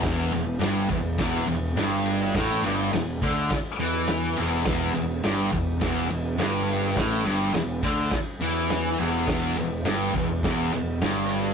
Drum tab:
RD |xxxxxxxx|xxxxxxxx|xxxxxxxx|xxxxxxxx|
SD |o-o-o-o-|o-o-o-o-|o-o-o-o-|o-o-o-o-|
BD |o--oo---|o--oo---|o--oo---|o--oo---|

RD |xxxxxxxx|
SD |o-o-o-o-|
BD |o--oo---|